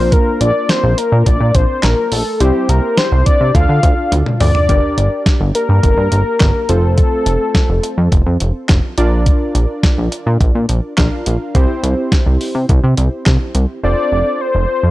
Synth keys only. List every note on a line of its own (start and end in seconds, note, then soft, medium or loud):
0.00 2.08 A#3 medium
0.00 2.08 D4 medium
0.00 2.08 F4 medium
0.00 2.08 A#4 medium
2.41 3.53 C4 medium
2.41 3.53 E4 medium
2.41 3.53 G4 medium
2.41 3.53 C5 medium
3.55 4.67 D4 medium
3.55 4.67 F4 medium
3.55 4.67 A4 medium
3.55 4.67 D5 medium
4.69 6.65 D4 medium
4.69 6.65 G4 medium
4.69 6.65 A#4 medium
4.69 6.65 D5 medium
6.69 8.94 C4 medium
6.69 8.94 F4 medium
6.69 8.94 A4 medium
6.69 8.94 C5 medium
8.98 10.94 D4 medium
8.98 10.94 F4 medium
8.98 10.94 A#4 medium
8.98 10.94 D5 medium
10.98 11.55 D4 medium
10.98 11.55 F4 medium
10.98 11.55 A#4 medium
10.98 11.55 F5 medium
11.55 13.80 C4 medium
11.55 13.80 E4 medium
11.55 13.80 G4 medium
11.55 13.80 C5 medium
13.84 14.91 C4 medium
13.84 14.91 F4 medium
13.84 14.91 A4 medium
13.84 14.91 C5 medium